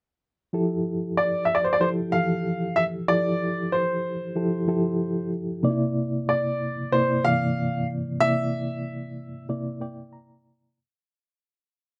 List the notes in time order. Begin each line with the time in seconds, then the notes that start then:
0.53 F3 E4 G4 A4
1.17 D5
1.45 E5
1.55 D5
1.64 C5
1.73 D5
1.80 F3 E4 G4 A4 C5
2.12 E3 F3 G4 A4 F5
2.76 E5
3.08 F3 E4 G4 A4 D5
3.72 C5
4.35 F3 E4 G4 A4
4.67 F3 E4 G4 A4
5.63 C3 A#3 D#4 D5
5.70 E4
6.29 D5
6.92 C3 A#3 E4 C5 D5
7.24 C3 E3 A#3 D5 F5
8.20 C3 A#3 E4 D5 E5
9.49 C3 A#3 E4 D5
9.81 C3 A#3 E4 D5 G5
10.13 A#5